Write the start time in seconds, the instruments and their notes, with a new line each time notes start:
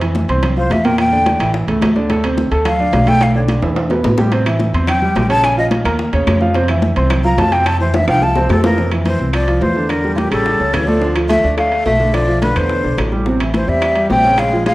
Already playing: upright bass F2
0.01 grand piano E3 E4 E5, high bongo, high conga, high timbale
0.15 high bongo, high conga, low timbale
0.28 upright bass C2, grand piano C4 C5 C6, high conga, high timbale
0.43 high bongo, high conga, low conga, high timbale
0.57 grand piano F3 F4 F5, flute C5, high bongo, high conga
0.70 upright bass E2, flute E5, high bongo, low bongo, high conga, high timbale, low timbale
0.84 grand piano A#2 A#3 A#4, flute G5, high bongo, high conga, high timbale
0.98 flute G5, high bongo, high conga, high timbale
1.12 grand piano D3 D4 D5, high bongo, high conga
1.26 high bongo, high conga, high timbale, low timbale
1.40 upright bass A1, grand piano E3 E4 E5, high conga, high timbale
1.54 high bongo, high conga
1.67 upright bass C#2, grand piano A2 A3 A4, high bongo, high conga, high timbale
1.81 upright bass D2, high bongo, low bongo, high conga, high timbale, low timbale
1.96 grand piano D3 D4 D5, high bongo, high conga
2.10 grand piano A2 A3 A4, high bongo, high conga, high timbale
2.24 grand piano C3 C4 C5, high bongo, high conga, high timbale
2.37 high bongo, high conga, low timbale
2.51 upright bass D2, grand piano A3 A4 A5, high conga, high timbale
2.65 flute F5, high bongo, high conga, low conga, high timbale
2.79 grand piano D3 D4 D5, high bongo, high conga
2.93 upright bass B1, high bongo, low bongo, high conga, high timbale, low timbale
3.07 grand piano A2 A3 A4, flute G5, high bongo, high timbale
3.21 flute F5, high bongo, high timbale
3.35 grand piano D3 D4 D5, flute C#5, high bongo, high conga
3.48 high bongo, high conga, high timbale, low timbale
3.62 upright bass E2, grand piano E3 E4 E5, high bongo, high conga, high timbale
3.76 high bongo, high conga, high timbale
3.90 grand piano B2 B3 B4, low bongo, high conga, low timbale
4.04 upright bass A1, low bongo, high conga, low timbale
4.18 grand piano G3 G4 G5, low bongo, high conga, low timbale
4.32 grand piano C3 C4 C5, high bongo, high conga, high timbale
4.46 grand piano E3 E4 E5, high bongo, high conga, high timbale, claves
4.59 high bongo, high conga, low timbale
4.73 upright bass E2, grand piano C4 C5 C6, high conga, high timbale
4.87 flute G5, high bongo, high conga, low conga, high timbale, claves
5.01 grand piano G3 G4 G5, high bongo, high conga, low conga
5.15 upright bass A#1, high bongo, low bongo, high conga, high timbale, low timbale
5.29 grand piano C#3 C#4 C#5, flute A5, high bongo, high conga, high timbale
5.43 flute G#5, high bongo, high conga, high timbale, claves
5.57 grand piano F3 F4 F5, flute D#5, high bongo, high conga
5.71 high bongo, high conga, high timbale, low timbale
5.85 upright bass D#2, grand piano A#3 A#4 A#5, high conga, high timbale, claves
5.99 high bongo, high conga
6.13 upright bass D#2, grand piano C#3 C#4 C#5, high bongo, high conga, high timbale
6.27 upright bass F2, high bongo, low bongo, high conga, high timbale, low timbale, claves
6.41 grand piano F3 F4 F5, high bongo, high conga
6.54 grand piano C3 C4 C5, high bongo, high conga, high timbale
6.68 grand piano E3 E4 E5, high bongo, high conga, high timbale, claves
6.82 high bongo, high conga, low timbale
6.96 upright bass C2, grand piano C4 C5 C6, high conga, high timbale
7.10 high bongo, high conga, low conga, high timbale, claves
7.24 grand piano F3 F4 F5, flute A#5, high bongo, high conga
7.38 upright bass F2, flute A5, high bongo, low bongo, high conga, high timbale, low timbale
7.52 grand piano C3 C4 C5, flute G5, high bongo, high conga, high timbale
7.66 flute A5, high bongo, high conga, high timbale, claves
7.80 grand piano E3 E4 E5, flute C5, high bongo, high conga
7.94 flute E5, high bongo, high conga, high timbale
8.08 upright bass C2, grand piano F3 F4 F5, flute G5, high timbale, claves
8.22 flute A5, low bongo, high conga
8.36 grand piano C3 C4 C5, low bongo, high conga, low timbale
8.49 upright bass F2, baritone saxophone C3, flute A4, low bongo, high conga, low timbale, claves
8.64 baritone saxophone E3, grand piano F3 F4 F5, flute A#4, low bongo, high conga, low timbale
8.78 grand piano C3 C4, high bongo, high conga
8.92 grand piano E3 E4, high bongo, high conga, high timbale, claves
9.04 baritone saxophone E3, flute C5, high bongo, high conga, high timbale
9.19 upright bass C2, grand piano C4 C5, high bongo, high conga
9.33 baritone saxophone F3, flute D5, high bongo, high conga, high timbale, claves
9.48 grand piano F3 F4, high conga, high timbale
9.61 upright bass E2, baritone saxophone E3, flute C5, high bongo, low bongo, high conga, low timbale
9.76 grand piano D3 D4, high bongo
9.89 baritone saxophone D3, flute A#4, high bongo, high conga, high timbale, claves
10.04 grand piano G3 G4, high bongo, high conga
10.14 baritone saxophone A2 A#2, flute F4 G4, high bongo, high conga, high timbale
10.30 upright bass A1, baritone saxophone C#3, grand piano G3 G4, flute A4, high bongo, high conga, high timbale, claves
10.46 high bongo, high conga
10.60 upright bass C#2, grand piano C#3 C#4, high conga
10.73 upright bass D2, baritone saxophone E3, flute C#5, high bongo, low bongo, high conga, high timbale, claves
10.87 baritone saxophone F3, grand piano A3 A4, flute D5, high bongo, high conga
11.02 grand piano D3 D4, high bongo
11.16 grand piano F3 F4, high bongo, high conga, high timbale, claves
11.29 baritone saxophone A3, flute E5, high bongo, high conga, high timbale
11.44 upright bass D2, grand piano D4 D5, high bongo, high conga
11.57 baritone saxophone A3, flute F5, high bongo, high conga, high timbale, claves
11.72 grand piano A3 A4, high conga, high timbale
11.86 upright bass B1, baritone saxophone A3, flute E5, high bongo, low bongo, high conga, low timbale
12.00 grand piano D3 D4, high bongo, high conga
12.13 baritone saxophone F3, flute D5, high bongo, high timbale, claves
12.28 grand piano F3 F4, high bongo, high conga
12.41 baritone saxophone D3, flute B4, high bongo, high conga, high timbale
12.56 upright bass E2, baritone saxophone D3, grand piano B3 B4, flute C5, high bongo, high conga, high timbale, claves
12.69 high bongo, high conga
12.84 upright bass B1, grand piano D3 D4, high conga
12.98 upright bass A1, high bongo, low bongo, high conga, high timbale, low timbale, claves
13.12 grand piano G3 G4, high bongo
13.26 grand piano C3 C4, high bongo, high conga
13.40 grand piano E3 E4, high bongo, high conga, high timbale, claves
13.54 baritone saxophone E3, flute C5, high bongo, high conga, high timbale
13.67 upright bass E2, baritone saxophone G3, grand piano C4 C5, flute E5, high bongo, high conga
13.82 high bongo, high conga, high timbale, claves
13.96 grand piano G3 G4, high conga, high timbale
14.10 upright bass A#1, baritone saxophone C4, flute G5, high bongo, low bongo, high conga, low timbale
14.24 grand piano C#3 C#4, high bongo
14.38 baritone saxophone G#3, flute F5, high bongo, high conga, high timbale, claves
14.52 grand piano F3 F4, high bongo, high conga
14.66 baritone saxophone G#3, flute F5, high bongo, high conga, high timbale